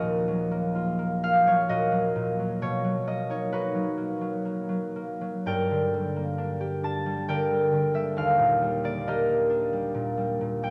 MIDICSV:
0, 0, Header, 1, 2, 480
1, 0, Start_track
1, 0, Tempo, 936037
1, 1340, Time_signature, 3, 2, 24, 8
1, 2293, Tempo, 1018676
1, 2773, Tempo, 890208
1, 5584, End_track
2, 0, Start_track
2, 0, Title_t, "Harp"
2, 0, Program_c, 0, 46
2, 0, Note_on_c, 0, 39, 67
2, 0, Note_on_c, 0, 53, 60
2, 0, Note_on_c, 0, 58, 60
2, 0, Note_on_c, 0, 65, 62
2, 0, Note_on_c, 0, 66, 76
2, 0, Note_on_c, 0, 70, 76
2, 0, Note_on_c, 0, 75, 96
2, 0, Note_on_c, 0, 82, 76
2, 10, Note_on_c, 0, 46, 50
2, 140, Note_off_c, 0, 58, 0
2, 143, Note_on_c, 0, 54, 56
2, 263, Note_on_c, 0, 58, 56
2, 379, Note_off_c, 0, 65, 0
2, 385, Note_on_c, 0, 65, 54
2, 500, Note_off_c, 0, 58, 0
2, 506, Note_on_c, 0, 58, 56
2, 626, Note_off_c, 0, 65, 0
2, 631, Note_on_c, 0, 65, 54
2, 634, Note_on_c, 0, 77, 98
2, 744, Note_off_c, 0, 54, 0
2, 750, Note_on_c, 0, 54, 51
2, 754, Note_on_c, 0, 73, 79
2, 860, Note_off_c, 0, 46, 0
2, 861, Note_off_c, 0, 75, 0
2, 865, Note_off_c, 0, 66, 0
2, 865, Note_on_c, 0, 46, 55
2, 867, Note_off_c, 0, 70, 0
2, 869, Note_on_c, 0, 66, 75
2, 869, Note_on_c, 0, 75, 93
2, 875, Note_on_c, 0, 70, 67
2, 890, Note_off_c, 0, 82, 0
2, 952, Note_off_c, 0, 73, 0
2, 977, Note_off_c, 0, 54, 0
2, 984, Note_on_c, 0, 54, 54
2, 1099, Note_off_c, 0, 46, 0
2, 1105, Note_on_c, 0, 46, 52
2, 1221, Note_off_c, 0, 54, 0
2, 1227, Note_on_c, 0, 54, 51
2, 1342, Note_on_c, 0, 47, 68
2, 1344, Note_on_c, 0, 73, 93
2, 1358, Note_off_c, 0, 53, 0
2, 1359, Note_off_c, 0, 39, 0
2, 1361, Note_off_c, 0, 46, 0
2, 1363, Note_off_c, 0, 65, 0
2, 1363, Note_off_c, 0, 77, 0
2, 1452, Note_off_c, 0, 54, 0
2, 1458, Note_on_c, 0, 54, 53
2, 1570, Note_off_c, 0, 58, 0
2, 1570, Note_off_c, 0, 75, 0
2, 1575, Note_on_c, 0, 58, 57
2, 1577, Note_on_c, 0, 75, 90
2, 1689, Note_off_c, 0, 73, 0
2, 1691, Note_on_c, 0, 63, 53
2, 1695, Note_on_c, 0, 73, 83
2, 1775, Note_off_c, 0, 75, 0
2, 1801, Note_off_c, 0, 58, 0
2, 1805, Note_off_c, 0, 66, 0
2, 1806, Note_off_c, 0, 63, 0
2, 1806, Note_on_c, 0, 58, 51
2, 1807, Note_on_c, 0, 71, 91
2, 1811, Note_on_c, 0, 63, 65
2, 1812, Note_on_c, 0, 66, 67
2, 1894, Note_off_c, 0, 73, 0
2, 1916, Note_off_c, 0, 54, 0
2, 1922, Note_on_c, 0, 54, 53
2, 2033, Note_off_c, 0, 58, 0
2, 2039, Note_on_c, 0, 58, 52
2, 2153, Note_off_c, 0, 54, 0
2, 2160, Note_on_c, 0, 54, 54
2, 2275, Note_off_c, 0, 58, 0
2, 2281, Note_on_c, 0, 58, 51
2, 2389, Note_off_c, 0, 54, 0
2, 2395, Note_on_c, 0, 54, 52
2, 2516, Note_off_c, 0, 58, 0
2, 2522, Note_on_c, 0, 58, 49
2, 2636, Note_off_c, 0, 54, 0
2, 2641, Note_on_c, 0, 54, 52
2, 2758, Note_on_c, 0, 43, 64
2, 2760, Note_off_c, 0, 70, 0
2, 2762, Note_on_c, 0, 79, 102
2, 2765, Note_on_c, 0, 70, 70
2, 2768, Note_on_c, 0, 74, 72
2, 2786, Note_off_c, 0, 54, 0
2, 2791, Note_off_c, 0, 71, 0
2, 2794, Note_off_c, 0, 47, 0
2, 2794, Note_off_c, 0, 63, 0
2, 2794, Note_off_c, 0, 66, 0
2, 2890, Note_on_c, 0, 50, 53
2, 3016, Note_on_c, 0, 55, 55
2, 3129, Note_off_c, 0, 58, 0
2, 3136, Note_on_c, 0, 58, 54
2, 3253, Note_on_c, 0, 62, 56
2, 3375, Note_on_c, 0, 67, 60
2, 3492, Note_off_c, 0, 62, 0
2, 3497, Note_on_c, 0, 62, 57
2, 3501, Note_on_c, 0, 81, 97
2, 3613, Note_off_c, 0, 55, 0
2, 3620, Note_on_c, 0, 55, 54
2, 3733, Note_off_c, 0, 79, 0
2, 3734, Note_off_c, 0, 50, 0
2, 3739, Note_on_c, 0, 50, 51
2, 3740, Note_off_c, 0, 74, 0
2, 3741, Note_off_c, 0, 70, 0
2, 3741, Note_on_c, 0, 79, 103
2, 3745, Note_on_c, 0, 70, 77
2, 3748, Note_on_c, 0, 74, 73
2, 3853, Note_off_c, 0, 55, 0
2, 3860, Note_on_c, 0, 55, 54
2, 3969, Note_off_c, 0, 50, 0
2, 3976, Note_on_c, 0, 50, 52
2, 4087, Note_off_c, 0, 55, 0
2, 4093, Note_on_c, 0, 55, 53
2, 4098, Note_on_c, 0, 76, 86
2, 4216, Note_on_c, 0, 39, 67
2, 4222, Note_on_c, 0, 77, 94
2, 4229, Note_off_c, 0, 43, 0
2, 4234, Note_off_c, 0, 50, 0
2, 4235, Note_off_c, 0, 81, 0
2, 4301, Note_off_c, 0, 76, 0
2, 4337, Note_on_c, 0, 46, 52
2, 4455, Note_off_c, 0, 55, 0
2, 4462, Note_on_c, 0, 55, 53
2, 4572, Note_off_c, 0, 58, 0
2, 4577, Note_off_c, 0, 74, 0
2, 4578, Note_on_c, 0, 58, 57
2, 4583, Note_on_c, 0, 74, 90
2, 4698, Note_off_c, 0, 62, 0
2, 4703, Note_off_c, 0, 70, 0
2, 4704, Note_on_c, 0, 62, 56
2, 4706, Note_off_c, 0, 67, 0
2, 4706, Note_on_c, 0, 75, 93
2, 4710, Note_on_c, 0, 70, 70
2, 4712, Note_on_c, 0, 67, 68
2, 4784, Note_off_c, 0, 74, 0
2, 4816, Note_off_c, 0, 58, 0
2, 4822, Note_on_c, 0, 58, 58
2, 4830, Note_off_c, 0, 77, 0
2, 4927, Note_off_c, 0, 62, 0
2, 4933, Note_on_c, 0, 62, 55
2, 5052, Note_off_c, 0, 55, 0
2, 5058, Note_on_c, 0, 55, 52
2, 5168, Note_off_c, 0, 46, 0
2, 5175, Note_on_c, 0, 46, 55
2, 5292, Note_off_c, 0, 55, 0
2, 5299, Note_on_c, 0, 55, 57
2, 5418, Note_off_c, 0, 46, 0
2, 5425, Note_on_c, 0, 46, 53
2, 5538, Note_off_c, 0, 55, 0
2, 5541, Note_off_c, 0, 79, 0
2, 5544, Note_on_c, 0, 55, 57
2, 5548, Note_on_c, 0, 79, 93
2, 5584, Note_off_c, 0, 39, 0
2, 5584, Note_off_c, 0, 46, 0
2, 5584, Note_off_c, 0, 55, 0
2, 5584, Note_off_c, 0, 58, 0
2, 5584, Note_off_c, 0, 62, 0
2, 5584, Note_off_c, 0, 67, 0
2, 5584, Note_off_c, 0, 70, 0
2, 5584, Note_off_c, 0, 75, 0
2, 5584, Note_off_c, 0, 79, 0
2, 5584, End_track
0, 0, End_of_file